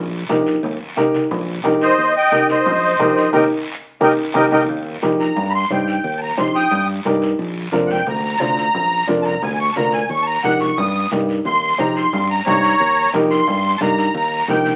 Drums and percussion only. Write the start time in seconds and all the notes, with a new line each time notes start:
0.29 high conga, short guiro
0.47 short guiro
0.63 low conga, long guiro
0.97 high conga, short guiro
1.14 high conga, short guiro
1.31 low conga, long guiro
1.65 high conga, low conga, short guiro
1.81 short guiro
1.98 long guiro
2.32 high conga, short guiro
2.49 high conga, short guiro
2.66 low conga, long guiro
3.00 high conga, short guiro
3.17 short guiro
3.33 high conga, long guiro
4.01 high conga, long guiro
4.35 high conga, long guiro
4.52 high conga, long guiro
4.69 long guiro
5.03 high conga, short guiro
5.20 short guiro
5.36 low conga, long guiro
5.70 high conga, short guiro
5.87 short guiro
6.04 long guiro
6.38 high conga, short guiro
6.55 short guiro
6.72 low conga, long guiro
7.05 high conga, short guiro
7.22 short guiro
7.39 long guiro
7.73 high conga, short guiro
7.90 high conga, short guiro
8.06 low conga, long guiro
8.41 high conga, short guiro
8.57 short guiro
8.74 low conga, long guiro
9.08 high conga, short guiro
9.25 high conga, short guiro
9.42 low conga, long guiro
9.75 high conga, short guiro
9.92 short guiro
10.09 long guiro
10.43 high conga, short guiro
10.60 high conga, short guiro
10.77 low conga, long guiro
11.11 high conga, short guiro
11.29 short guiro
11.45 low conga, long guiro
11.79 high conga, short guiro
11.96 short guiro
12.13 low conga, long guiro
12.46 high conga, low conga, short guiro
12.63 short guiro
12.81 long guiro
13.14 high conga, short guiro
13.31 short guiro
13.47 low conga, long guiro
13.81 high conga, short guiro
13.98 short guiro
14.15 long guiro
14.49 high conga, short guiro
14.65 high conga, short guiro